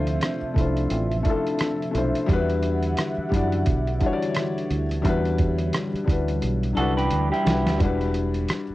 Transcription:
Already playing: D2 C3 F3 A3 D4 E4 F4 C5 E5
0.07 closed hi-hat
0.21 cross-stick, closed hi-hat
0.42 muted fingered electric bass stroke
0.54 C2 A3 D4 E4, kick, closed hi-hat
0.59 F4 C5
0.77 closed hi-hat
0.90 A1, closed hi-hat
1.11 closed hi-hat
1.23 A3 D4 E4, kick, closed hi-hat
1.28 F4 A4
1.47 closed hi-hat
1.59 cross-stick, closed hi-hat
1.82 closed hi-hat
1.91 B1 A3 D4 E4, closed hi-hat
1.96 F4 C5
2.15 closed hi-hat
2.26 E2 D3 E3 G3 D4 E4 F#5, kick, closed hi-hat
2.31 F#4 B4
2.50 closed hi-hat
2.63 closed hi-hat
2.83 closed hi-hat
2.97 cross-stick, closed hi-hat
3.18 muted fingered electric bass stroke
3.29 F#2 D4 E4 G4, kick
3.34 F#4 D5, closed hi-hat
3.52 closed hi-hat
3.66 B1, kick, closed hi-hat
3.87 closed hi-hat
4.00 G3 D4 E4, kick, closed hi-hat
4.05 F#4 C#5
4.13 D5
4.22 closed hi-hat
4.34 cross-stick, closed hi-hat
4.58 closed hi-hat
4.70 D2, closed hi-hat
4.91 closed hi-hat
5.02 E2 G3 D4 E4, kick, closed hi-hat
5.07 F#4 B4
5.25 closed hi-hat
5.38 kick, closed hi-hat
5.58 closed hi-hat
5.73 cross-stick, closed hi-hat
5.94 muted fingered electric bass stroke, closed hi-hat
6.04 D2 G3 D4 E4, kick
6.09 F#4 B4, closed hi-hat
6.28 closed hi-hat
6.42 B1, closed hi-hat
6.63 closed hi-hat
6.73 F#3 D4 E4 A4, closed hi-hat
6.77 C2 G3 F#4 B4 F#5
6.97 G4 B4, closed hi-hat
7.11 D2, closed hi-hat
7.32 E4 G4, closed hi-hat
7.43 C2 G3 D4 E4, closed hi-hat
7.47 F#4 B4, snare
7.66 D2, snare, closed hi-hat
7.78 E1 G3 D4 E4, kick, closed hi-hat
7.83 F#4 B4
8.01 closed hi-hat
8.14 closed hi-hat
8.34 closed hi-hat
8.49 cross-stick, closed hi-hat
8.70 muted fingered electric bass stroke

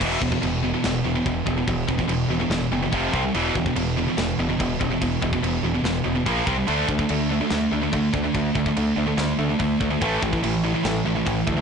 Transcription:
0.00 E1 E2 B2 E3, kick, crash
0.21 E1 E2 B2, kick
0.32 E2 B2, kick
0.42 E1 E2 B2, crash
0.63 E2 B2
0.74 E2 B2
0.84 E1 E2 B2, snare, crash
1.04 E1 E2 B2
1.15 E2 B2
1.26 E1 E2 B2, kick, crash
1.46 E1 E2 B2, kick
1.57 E2 B2
1.67 E1 E2 B2, kick, crash
1.88 E1 E2 B2, kick
1.98 E2 B2, kick
2.08 E1 E2 B2, crash
2.29 E1 E2 B2
2.40 E2 B2
2.50 E1 E2 B2, snare, crash
2.72 F#1 E2 B2
2.82 E2 B2
2.92 F1 F2 C3 F3, kick, crash
3.13 C2 C3 G3 C4, kick
3.23 C3 G3
3.34 E1 E2 B2 E3, crash
3.55 E1 E2 B2, kick
3.66 E2 B2, kick
3.76 E1 E2 B2, crash
3.97 E2 B2
4.07 E2 B2
4.17 E1 E2 B2, snare, crash
4.39 E1 E2 B2
4.49 E2 B2
4.59 E1 E2 B2, kick, crash
4.80 E1 E2 B2, kick
4.90 E2 B2
5.01 E1 E2 B2, kick, crash
5.22 E1 E2 B2, kick
5.33 E2 B2, kick
5.43 E1 E2 B2, crash
5.63 E1 E2 B2
5.75 E2 B2
5.84 E1 E2 B2, snare, crash
6.06 E1 E2 B2
6.16 E2 B2
6.26 A#1 A#2 F3 A#3, kick, crash
6.46 C2 C3 G3 C4, kick
6.56 C3 G3
6.68 D2 D3 A3 D4, crash
6.88 D2 D3 A3, kick
6.99 D3 A3, kick
7.09 D2 D3 A3, crash
7.30 D3 A3
7.41 D3 A3
7.50 D2 D3 A3, snare, crash
7.72 D2 D3 A3
7.82 D3 A3
7.92 D2 D3 A3, kick, crash
8.13 D2 D3 A3, kick
8.24 D3 A3
8.34 D2 D3 A3, kick, crash
8.55 D2 D3 A3, kick
8.66 D3 A3, kick
8.77 D2 D3 A3, crash
8.97 D2 D3 A3
9.08 D3 A3
9.17 D2 D3 A3, snare, crash
9.39 D2 D3 A3
9.50 D3 A3
9.60 D2 D3 A3, kick, crash
9.81 D2 D3 A3, kick
9.90 D3 A3
10.01 A1 A2 E3 A3, kick, crash
10.22 A1 A2 E3, kick
10.33 A2 E3, kick
10.43 A1 A2 E3, crash
10.64 A2 E3
10.75 A2 E3
10.85 A1 A2 E3, snare, crash
11.06 A1 A2 E3
11.16 A2 E3
11.25 A1 A2 E3, kick, crash
11.47 D2 A2 E3, kick
11.57 A2 E3

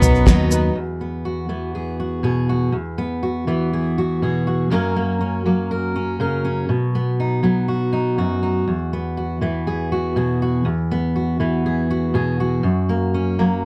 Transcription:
Already playing: F#2 F#3 B3 F#4
0.02 B1 F#3 B3 D#4 B4, floor tom, shaker
0.15 shaker
0.26 D#2 B2 D#3 F#3 B3 D#4 B4, kick, snare, shaker
0.51 F#3 B3 D#4 B4, shaker
0.75 E2
1.01 B3
1.25 F#4
1.49 E3 B3
1.75 G#4
2.00 F#4
2.23 B2 G#4
2.49 F#4
2.72 E2
2.98 B3
3.23 F#4
3.47 E3 B3
3.73 G#4
3.98 F#4
4.22 B2 G#4
4.47 F#4
4.70 F#2 F#3 A#3 C#4 A#4
4.96 A#3
5.21 C#4
5.46 F#3 A#3
5.71 A#4
5.96 C#4
6.20 C#3 A#4
6.45 C#4
6.69 B2
6.95 B3
7.20 D#4
7.43 F#3 B3
7.68 F#4
7.93 D#4
8.18 F#2 F#4
8.43 D#4
8.68 E2
8.93 B3
9.17 F#4
9.41 E3 B3
9.67 G#4
9.92 F#4
10.16 B2 G#4
10.42 F#4
10.65 E2
10.92 B3
11.16 F#4
11.40 E3 B3
11.66 G#4
11.90 F#4
12.14 B2 G#4
12.40 F#4
12.63 F#2
12.89 A#3
13.14 C#4
13.39 F#3 A#3

